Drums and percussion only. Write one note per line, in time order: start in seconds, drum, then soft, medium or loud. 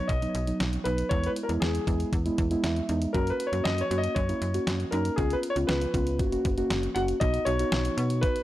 0.09 kick medium
0.09 closed hi-hat medium
0.22 closed hi-hat soft
0.35 closed hi-hat medium
0.47 closed hi-hat medium
0.60 snare loud
0.60 closed hi-hat medium
0.73 closed hi-hat soft
0.85 closed hi-hat medium
0.98 closed hi-hat soft
1.11 kick loud
1.11 closed hi-hat medium
1.24 closed hi-hat soft
1.36 closed hi-hat medium
1.49 closed hi-hat medium
1.62 snare loud
1.62 closed hi-hat medium
1.75 closed hi-hat medium
1.87 kick medium
1.87 closed hi-hat medium
2.00 closed hi-hat soft
2.13 kick medium
2.13 closed hi-hat medium
2.26 closed hi-hat soft
2.38 kick medium
2.38 closed hi-hat medium
2.51 closed hi-hat medium
2.64 snare loud
2.64 closed hi-hat medium
2.76 closed hi-hat soft
2.89 closed hi-hat medium
3.02 closed hi-hat soft
3.14 kick loud
3.14 closed hi-hat medium
3.27 closed hi-hat soft
3.40 closed hi-hat medium
3.53 closed hi-hat medium
3.65 snare loud
3.65 closed hi-hat medium
3.78 closed hi-hat medium
3.91 closed hi-hat medium
4.04 closed hi-hat medium
4.16 kick medium
4.16 closed hi-hat medium
4.29 closed hi-hat soft
4.42 closed hi-hat medium
4.54 closed hi-hat medium
4.67 snare loud
4.67 closed hi-hat medium
4.80 closed hi-hat soft
4.92 closed hi-hat medium
5.05 closed hi-hat soft
5.18 kick loud
5.18 closed hi-hat medium
5.30 closed hi-hat medium
5.43 closed hi-hat medium
5.56 closed hi-hat medium
5.69 snare loud
5.69 closed hi-hat medium
5.82 closed hi-hat medium
5.94 kick medium
5.94 closed hi-hat medium
6.07 closed hi-hat medium
6.19 kick medium
6.19 closed hi-hat medium
6.32 closed hi-hat soft
6.45 kick medium
6.45 closed hi-hat medium
6.58 closed hi-hat medium
6.70 snare loud
6.70 closed hi-hat medium
6.83 closed hi-hat soft
6.96 closed hi-hat medium
7.08 closed hi-hat medium
7.21 kick loud
7.21 closed hi-hat medium
7.34 closed hi-hat medium
7.47 closed hi-hat medium
7.59 closed hi-hat medium
7.72 snare loud
7.72 closed hi-hat medium
7.85 closed hi-hat medium
7.98 closed hi-hat medium
8.10 closed hi-hat medium
8.23 kick loud
8.23 closed hi-hat medium
8.36 closed hi-hat soft